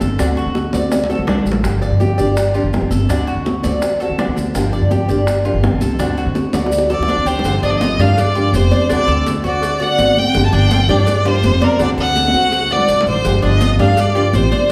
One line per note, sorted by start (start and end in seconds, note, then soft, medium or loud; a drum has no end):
0.00 0.18 G1 medium
0.00 0.18 F3 soft
0.00 0.18 A#3 soft
0.00 0.18 D4 medium
0.00 0.19 G4 soft
0.00 0.18 A4 medium
0.00 high conga medium
0.00 maracas medium
0.18 0.45 D2 medium
0.18 0.72 D3 medium
0.18 0.73 A3 medium
0.18 0.73 C4 medium
0.18 0.36 D4 medium
0.18 0.72 F#4 medium
0.18 high bongo medium
0.18 high conga soft
0.18 maracas medium
0.37 0.72 F#4 medium
0.37 high bongo soft
0.37 high conga soft
0.37 maracas soft
0.46 0.72 D3 medium
0.55 high bongo medium
0.55 high conga medium
0.55 maracas soft
0.73 1.16 D2 medium
0.73 0.91 A3 soft
0.73 0.91 C4 medium
0.73 0.91 F#4 medium
0.73 1.09 D5 medium
0.73 high conga loud
0.73 maracas medium
0.92 muted nylon-string guitar stroke medium
0.92 high bongo medium
0.92 high conga medium
0.92 maracas medium
1.04 high conga medium
1.09 1.26 A3 medium
1.09 1.27 C4 medium
1.09 1.27 F#4 medium
1.09 1.27 A4 medium
1.09 high bongo soft
1.09 maracas soft
1.15 1.27 D2 medium
1.15 low conga medium
1.27 1.44 C2 medium
1.27 1.62 D3 soft
1.27 1.63 A3 soft
1.27 1.64 C4 soft
1.27 1.45 D4 medium
1.27 1.64 F#4 soft
1.27 high bongo medium
1.27 low bongo medium
1.27 low conga loud
1.27 maracas soft
1.39 low conga medium
1.45 1.62 A1 medium
1.45 high bongo soft
1.45 maracas medium
1.52 low conga loud
1.63 1.90 G1 medium
1.63 2.18 D3 medium
1.63 2.18 F3 medium
1.63 2.18 A#3 medium
1.63 2.18 D4 medium
1.63 2.17 G4 medium
1.63 high bongo medium
1.63 high conga soft
1.63 maracas medium
1.82 2.00 D5 medium
1.82 high conga soft
1.82 maracas soft
1.91 2.17 G2 medium
2.00 2.18 G4 medium
2.00 high bongo medium
2.00 high conga medium
2.00 maracas soft
2.18 2.62 G1 medium
2.18 2.36 F3 medium
2.18 2.36 A#3 medium
2.18 2.36 D4 medium
2.18 2.36 G4 medium
2.18 2.53 D5 medium
2.18 high conga soft
2.18 maracas medium
2.36 muted nylon-string guitar stroke medium
2.36 high bongo medium
2.36 high conga soft
2.36 maracas medium
2.54 2.72 F3 medium
2.54 2.72 A#3 medium
2.54 2.73 D4 medium
2.54 2.90 F4 medium
2.54 2.72 G4 medium
2.54 high conga soft
2.54 maracas soft
2.64 2.81 G1 medium
2.73 3.09 F3 soft
2.73 3.09 A#3 soft
2.73 3.09 D4 soft
2.73 3.09 G4 soft
2.73 high bongo medium
2.73 low bongo medium
2.73 high conga medium
2.73 maracas soft
2.82 2.90 G1 medium
2.90 3.08 G1 medium
2.90 3.09 A4 medium
2.90 high conga medium
2.90 maracas medium
3.09 3.35 D2 medium
3.09 3.63 D3 medium
3.09 3.63 A3 medium
3.09 3.63 C4 medium
3.09 3.27 D4 medium
3.09 3.63 F#4 medium
3.09 high bongo medium
3.09 high conga soft
3.09 maracas medium
3.27 3.63 F#4 medium
3.27 high bongo soft
3.27 high conga soft
3.27 maracas soft
3.36 3.62 D3 medium
3.46 high bongo medium
3.46 high conga medium
3.46 maracas soft
3.63 4.07 D2 medium
3.63 3.82 A3 medium
3.63 3.82 C4 medium
3.63 3.82 F#4 medium
3.63 3.99 D5 medium
3.63 high conga medium
3.63 maracas medium
3.82 muted nylon-string guitar stroke medium
3.82 high bongo medium
3.82 high conga soft
3.82 maracas medium
4.00 4.18 A3 medium
4.00 4.18 C4 medium
4.00 4.18 F#4 medium
4.00 4.18 A4 medium
4.00 high bongo soft
4.00 high conga soft
4.00 maracas soft
4.10 4.27 D2 medium
4.18 4.54 D3 soft
4.18 4.54 A3 soft
4.18 4.55 C4 soft
4.18 4.36 D4 medium
4.18 4.55 F#4 medium
4.18 high bongo medium
4.18 low bongo medium
4.18 high conga medium
4.18 maracas soft
4.27 4.36 D2 medium
4.36 4.54 D2 medium
4.36 high bongo soft
4.36 high conga medium
4.36 maracas medium
4.55 4.81 G1 medium
4.55 5.08 D3 medium
4.55 5.09 F3 medium
4.55 5.09 A#3 medium
4.55 5.09 D4 medium
4.55 5.08 G4 medium
4.55 high bongo medium
4.55 high conga soft
4.55 maracas medium
4.73 4.90 D5 medium
4.73 high conga soft
4.73 maracas soft
4.82 5.08 G2 medium
4.91 5.08 G4 medium
4.91 high bongo medium
4.91 high conga medium
4.91 maracas soft
5.09 5.52 G1 loud
5.09 5.26 F3 medium
5.09 5.26 A#3 medium
5.09 5.26 D4 medium
5.09 5.26 G4 medium
5.09 5.44 D5 medium
5.09 high conga soft
5.09 maracas medium
5.27 muted nylon-string guitar stroke medium
5.27 high bongo medium
5.27 high conga soft
5.27 maracas medium
5.45 5.62 F3 medium
5.45 5.63 A#3 medium
5.45 5.63 D4 medium
5.45 5.80 F4 medium
5.45 5.63 G4 medium
5.45 high conga soft
5.45 maracas soft
5.54 5.71 G1 loud
5.63 5.99 F3 soft
5.63 5.99 A#3 soft
5.63 5.99 D4 medium
5.63 6.00 G4 medium
5.63 high bongo medium
5.63 low bongo medium
5.63 high conga medium
5.63 maracas soft
5.73 5.80 G1 medium
5.81 5.98 C2 medium
5.81 5.99 A4 medium
5.81 high conga medium
5.81 maracas medium
5.99 6.25 D2 medium
5.99 6.53 D3 medium
5.99 6.54 A3 medium
5.99 6.54 C4 medium
5.99 6.17 D4 medium
5.99 6.53 F#4 medium
5.99 high bongo medium
5.99 high conga soft
5.99 maracas medium
6.17 6.53 F#4 medium
6.17 high bongo soft
6.17 high conga soft
6.17 maracas soft
6.26 6.52 D3 medium
6.35 high bongo medium
6.35 high conga medium
6.35 maracas soft
6.53 6.97 D2 loud
6.53 6.71 A3 medium
6.53 6.72 C4 medium
6.53 6.71 F#4 medium
6.53 6.89 D5 medium
6.53 high bongo loud
6.53 high conga medium
6.53 maracas medium
6.66 high bongo loud
6.71 muted nylon-string guitar stroke medium
6.71 high conga soft
6.71 maracas medium
6.78 high bongo medium
6.90 7.08 A3 medium
6.90 7.08 C4 medium
6.90 7.08 F#4 medium
6.90 7.08 A4 medium
6.90 7.29 D5 loud
6.90 high bongo medium
6.90 high conga soft
6.90 maracas soft
6.99 7.16 D2 loud
6.99 low bongo medium
7.08 7.43 D3 soft
7.08 7.44 A3 soft
7.08 7.44 C4 medium
7.08 7.26 D4 medium
7.08 7.45 F#4 medium
7.08 high conga medium
7.08 maracas soft
7.17 7.25 D2 medium
7.25 7.43 D2 medium
7.25 7.44 G4 medium
7.25 7.63 C5 loud
7.25 maracas medium
7.39 low bongo medium
7.44 7.61 G1 loud
7.44 7.98 D3 medium
7.44 7.99 F3 medium
7.44 7.99 A#3 medium
7.44 7.99 D4 medium
7.44 7.98 G4 medium
7.44 cowbell loud
7.44 high conga soft
7.44 maracas medium
7.63 7.97 G1 loud
7.63 7.81 D4 medium
7.63 7.71 D#5 loud
7.63 high conga soft
7.63 maracas soft
7.70 7.79 D5 medium
7.77 7.99 F4 medium
7.77 8.02 D#5 loud
7.77 cowbell medium
7.77 high conga loud
7.82 maracas medium
7.99 8.50 G2 medium
7.99 8.17 F3 medium
7.99 8.17 A#3 medium
7.99 8.17 D4 medium
7.99 8.34 D4 medium
7.99 8.17 G4 medium
7.99 8.21 F5 loud
7.99 high conga soft
7.99 low conga medium
7.99 maracas soft
8.18 8.57 D5 loud
8.18 muted nylon-string guitar stroke medium
8.18 cowbell loud
8.18 high conga soft
8.18 low conga medium
8.18 maracas medium
8.35 8.53 F3 medium
8.35 8.53 A#3 medium
8.35 8.53 D4 medium
8.35 8.70 F4 medium
8.35 8.53 G4 medium
8.35 high conga soft
8.35 maracas soft
8.53 8.70 F1 loud
8.53 8.89 F3 medium
8.53 8.89 A#3 soft
8.53 8.90 D4 medium
8.53 8.90 G4 medium
8.53 8.91 C5 loud
8.53 cowbell medium
8.53 high conga medium
8.53 maracas medium
8.71 8.89 D5 medium
8.71 cowbell medium
8.71 high conga medium
8.71 maracas soft
8.89 9.07 D2 medium
8.89 9.44 D3 medium
8.89 9.44 A3 medium
8.89 9.44 C4 medium
8.89 9.07 D4 medium
8.89 9.43 F#4 medium
8.89 9.25 D5 loud
8.89 cowbell loud
8.89 high conga soft
8.89 maracas medium
9.07 9.42 D2 loud
9.07 9.43 A4 medium
9.07 high conga soft
9.07 maracas soft
9.26 cowbell medium
9.26 high conga loud
9.26 maracas medium
9.44 9.96 D3 medium
9.44 9.62 A3 medium
9.44 9.62 C4 medium
9.44 9.79 F#4 medium
9.44 9.62 F#4 medium
9.44 9.85 D5 loud
9.44 maracas soft
9.63 muted nylon-string guitar stroke medium
9.63 cowbell loud
9.63 high conga soft
9.63 maracas medium
9.80 9.98 A3 medium
9.80 9.98 C4 medium
9.80 9.98 F#4 medium
9.80 10.15 D5 medium
9.80 10.20 F#5 loud
9.80 high conga soft
9.80 maracas soft
9.98 10.16 G#1 loud
9.98 10.33 D3 soft
9.98 10.34 A3 soft
9.98 10.35 C4 soft
9.98 10.35 F#4 medium
9.98 cowbell medium
9.98 high conga medium
9.98 maracas medium
10.16 10.45 G5 loud
10.16 high conga medium
10.16 maracas soft
10.34 10.52 G1 loud
10.34 10.88 D3 medium
10.34 10.88 F3 medium
10.34 10.89 A#3 medium
10.34 10.89 D4 medium
10.34 10.88 G4 medium
10.34 cowbell loud
10.34 high conga soft
10.34 maracas medium
10.46 10.55 A5 medium
10.53 10.87 G1 loud
10.53 10.70 D4 medium
10.53 10.92 G5 loud
10.53 high conga soft
10.53 maracas soft
10.70 10.88 F4 medium
10.70 cowbell medium
10.70 high conga loud
10.70 maracas medium
10.89 11.41 G2 medium
10.89 11.06 F3 medium
10.89 11.06 A#3 medium
10.89 11.24 D4 medium
10.89 11.06 D4 medium
10.89 11.06 G4 medium
10.89 11.29 D5 loud
10.89 high conga soft
10.89 low conga medium
10.89 maracas soft
11.07 muted nylon-string guitar stroke medium
11.07 cowbell loud
11.07 high conga soft
11.07 low conga medium
11.07 maracas medium
11.25 11.42 F3 medium
11.25 11.42 A#3 medium
11.25 11.43 D4 medium
11.25 11.60 F4 medium
11.25 11.43 G4 medium
11.25 11.66 C5 loud
11.25 high conga soft
11.25 maracas soft
11.43 11.61 F1 loud
11.43 11.79 F3 soft
11.43 11.79 A#3 soft
11.43 11.79 D4 medium
11.43 11.79 G4 medium
11.43 cowbell medium
11.43 high conga medium
11.43 maracas medium
11.61 11.81 A#4 loud
11.61 11.79 D5 medium
11.61 cowbell medium
11.61 high conga medium
11.61 maracas soft
11.79 11.97 D2 loud
11.79 12.33 D3 medium
11.79 12.34 A3 medium
11.79 12.34 C4 medium
11.79 11.97 D4 medium
11.79 12.33 F#4 medium
11.79 11.90 D5 loud
11.79 cowbell loud
11.79 high conga soft
11.79 maracas medium
11.97 12.32 D2 loud
11.97 12.33 A4 medium
11.97 12.74 F#5 loud
11.97 high conga soft
11.97 maracas soft
12.16 cowbell medium
12.16 high conga medium
12.16 maracas medium
12.28 high conga medium
12.34 12.86 D3 medium
12.34 12.52 A3 medium
12.34 12.52 C4 medium
12.34 12.69 F#4 medium
12.34 12.52 F#4 medium
12.34 maracas soft
12.52 muted nylon-string guitar stroke medium
12.52 cowbell loud
12.52 maracas medium
12.70 12.88 A3 medium
12.70 12.88 C4 medium
12.70 12.88 F#4 medium
12.70 13.06 D5 medium
12.70 13.07 D5 loud
12.70 maracas soft
12.76 low conga medium
12.88 13.05 C2 medium
12.88 13.23 D3 soft
12.88 13.24 A3 medium
12.88 13.24 C4 medium
12.88 cowbell medium
12.88 maracas medium
13.01 low conga loud
13.06 13.23 A1 medium
13.06 13.41 C5 loud
13.06 maracas soft
13.13 low conga medium
13.25 13.42 G1 loud
13.25 13.78 D3 medium
13.25 13.78 F3 medium
13.25 13.79 A#3 medium
13.25 13.78 G4 medium
13.25 cowbell loud
13.25 high conga soft
13.25 maracas medium
13.42 13.77 G1 loud
13.42 13.60 D4 medium
13.42 13.78 D#5 loud
13.42 high conga soft
13.42 maracas soft
13.61 13.78 F4 medium
13.61 cowbell medium
13.61 high conga loud
13.61 maracas medium
13.79 14.31 G2 medium
13.79 13.96 F3 medium
13.79 13.97 A#3 medium
13.79 14.14 D4 medium
13.79 13.97 D4 medium
13.79 13.97 G4 medium
13.79 14.01 F5 loud
13.79 high conga soft
13.79 low conga medium
13.79 maracas soft
13.97 14.37 D5 loud
13.97 muted nylon-string guitar stroke medium
13.97 cowbell loud
13.97 high conga soft
13.97 maracas medium
14.15 14.32 F3 medium
14.15 14.33 A#3 medium
14.15 14.33 D4 medium
14.15 14.50 F4 medium
14.15 14.33 G4 medium
14.15 maracas soft
14.33 14.51 A1 loud
14.33 14.69 F3 soft
14.33 14.69 A#3 soft
14.33 14.69 D4 medium
14.33 14.69 G4 medium
14.33 14.72 C5 loud
14.33 cowbell medium
14.33 high conga medium
14.33 maracas medium
14.52 14.69 D5 medium
14.52 cowbell medium
14.52 high conga medium
14.52 maracas soft